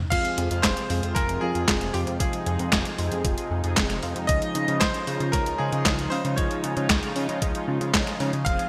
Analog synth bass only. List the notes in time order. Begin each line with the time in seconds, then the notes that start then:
0.12 F1
0.38 F2
0.51 F2
0.64 F1
0.90 F2
1.03 F2
1.16 F1
1.42 F2
1.55 F2
1.68 F1
1.94 F2
2.07 F2
2.20 F1
2.47 F2
2.60 F2
2.72 F1
2.99 F2
3.12 F2
3.25 F1
3.51 F2
3.64 F2
3.77 F1
4.03 F2
4.16 F2
4.29 C#2
4.55 C#3
4.68 C#3
4.81 C#2
5.07 C#3
5.20 C#3
5.33 C#2
5.60 C#3
5.73 C#3
5.86 C#2
6.12 C#3
6.25 C#3
6.38 C#2
6.64 C#3
6.77 C#3
6.90 C#2
7.16 C#3
7.29 C#3
7.42 C#2
7.68 C#3
7.81 C#3
7.94 C#2
8.20 C#3
8.33 C#3
8.46 F1